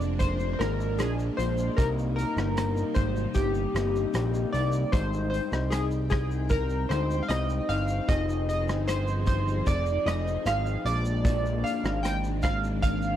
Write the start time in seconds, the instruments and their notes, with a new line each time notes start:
Already playing: analog synth bass F1, clean electric guitar F3 G#3 D4, string machine G#3 A#3 D4
0.01 shaker
0.19 synth keys C5, kick, closed hi-hat, shaker
0.39 shaker
0.53 synth keys C5
0.59 analog synth bass G#1, clean electric guitar A#2 F3 G#3 D4, synth keys A#4, cross-stick, closed hi-hat, shaker
0.80 shaker
0.99 analog synth bass A#1, clean electric guitar A#2 F3 G#3 D4, synth keys G#4, cross-stick, closed hi-hat, shaker
1.19 shaker
1.37 analog synth bass A#1, clean electric guitar A#2 F3 G#3 D4, synth keys C5, closed hi-hat, shaker
1.58 shaker
1.77 analog synth bass C2, clean electric guitar C3 G3 A#3 D#4, string machine C3 G3 D#4, synth keys A#4, kick, closed hi-hat, shaker
1.99 shaker
2.16 synth keys A#4, closed hi-hat, shaker
2.36 analog synth bass G1, clean electric guitar G3 A#3 D#4, cross-stick, shaker
2.57 cross-stick, closed hi-hat, shaker
2.77 shaker
2.94 analog synth bass G#1, synth keys C5, kick, closed hi-hat, shaker
3.16 shaker
3.34 analog synth bass G1, synth keys G4, kick, closed hi-hat, shaker
3.54 shaker
3.74 analog synth bass G1, clean electric guitar C3 G3 A#3 D#4, cross-stick, closed hi-hat, shaker
3.96 shaker
4.13 analog synth bass A#1, clean electric guitar C3 G3 A#3 D#4, cross-stick, closed hi-hat, shaker
4.34 shaker
4.53 analog synth bass C2, clean electric guitar C3 G3 A#3 D#4, synth keys D5, closed hi-hat, shaker
4.72 shaker
4.92 analog synth bass G#1, clean electric guitar G#2 G3 C4 D#4, string machine C4 G5, synth keys C5, kick, closed hi-hat, shaker
5.13 shaker
5.30 synth keys C5
5.34 closed hi-hat, shaker
5.51 analog synth bass C2, clean electric guitar C4 D#4, cross-stick, shaker
5.70 synth keys G#4, cross-stick, closed hi-hat, shaker
5.91 shaker
6.10 synth keys G#4, kick, cross-stick, closed hi-hat, shaker
6.31 shaker
6.49 synth keys A#4, kick, closed hi-hat, shaker
6.70 shaker
6.89 analog synth bass D2, clean electric guitar G#2 G3 C4 D#4, synth keys C5, cross-stick, closed hi-hat, shaker
7.11 shaker
7.23 synth keys F5
7.28 analog synth bass C2, clean electric guitar G#2 G3 C4 D#4, synth keys D#5, cross-stick, closed hi-hat, shaker
7.49 shaker
7.69 analog synth bass G1, clean electric guitar G3 C4 D#4, synth keys F5, closed hi-hat, shaker
7.88 shaker
8.08 analog synth bass F1, clean electric guitar F3 C4 D#4 G#4, string machine F3 D#4 G#4, synth keys D#5, kick, closed hi-hat, shaker
8.29 shaker
8.49 synth keys D#5, closed hi-hat, shaker
8.67 analog synth bass G1, clean electric guitar C4 D#4 G#4, cross-stick, shaker
8.88 synth keys C5, cross-stick, closed hi-hat, shaker
9.08 shaker
9.26 synth keys C5, kick, closed hi-hat, shaker
9.48 shaker
9.66 analog synth bass F1, synth keys D5, kick, closed hi-hat, shaker
9.86 shaker
10.05 analog synth bass F1, clean electric guitar F3 C4 D#4 G#4, synth keys D#5, cross-stick, closed hi-hat, shaker
10.28 shaker
10.45 analog synth bass G#1, clean electric guitar F3 C4 D#4 G#4, synth keys F5, cross-stick, closed hi-hat, shaker
10.66 shaker
10.84 analog synth bass A#1, clean electric guitar A#2 F3 G#3 D4, string machine G#3 A#3 D4, synth keys D5, closed hi-hat, shaker
11.05 shaker
11.24 clean electric guitar A#2 F3 G#3 D4, kick, closed hi-hat, shaker
11.46 shaker
11.64 synth keys F5, closed hi-hat, shaker
11.83 analog synth bass G#1, clean electric guitar F3 G#3 D4, cross-stick, shaker
12.03 synth keys G5, cross-stick, closed hi-hat, shaker
12.24 shaker
12.42 synth keys F5, kick, cross-stick, closed hi-hat, shaker
12.64 shaker
12.82 synth keys F5, kick, closed hi-hat, shaker
13.02 shaker